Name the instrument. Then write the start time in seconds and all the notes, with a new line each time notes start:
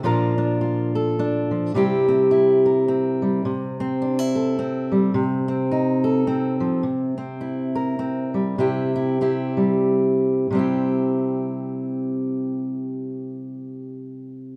steel-string acoustic guitar
0.03 A#2 F3 D4 F4 A#4
0.38 D4
0.61 F4
0.95 A4
1.19 D4
1.51 F3
1.74 C3 G3 C4 E4 G4
2.08 C4
2.31 E4
2.66 A#4
2.88 C4
3.22 G3
3.45 C3
3.80 C4
4.02 D4
4.19 E4
4.35 A4
4.59 C4
4.92 G3
5.14 C3
5.48 C4
5.71 D#4
6.04 A4
6.27 C4
6.60 F3
6.83 C3
7.18 C4
7.41 E4
7.75 A#4
7.99 C4
8.34 G3
8.58 C3 C4 E4 G4
8.96 E4
9.21 C4 E4 G4
9.57 G3
10.51 C3 G3
10.55 C4 E4
10.59 G4